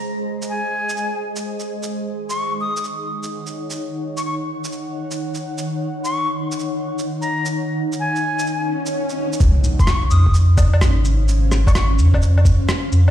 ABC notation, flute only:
X:1
M:4/4
L:1/16
Q:"Swing 16ths" 1/4=128
K:Ebdor
V:1 name="Flute"
z4 a6 z6 | z3 d'2 z e'2 z8 | z3 d' d' z8 z3 | z3 d'2 z8 b2 z |
z4 a6 z6 | z3 d'2 z e'2 z8 | z3 d' d' z8 z3 |]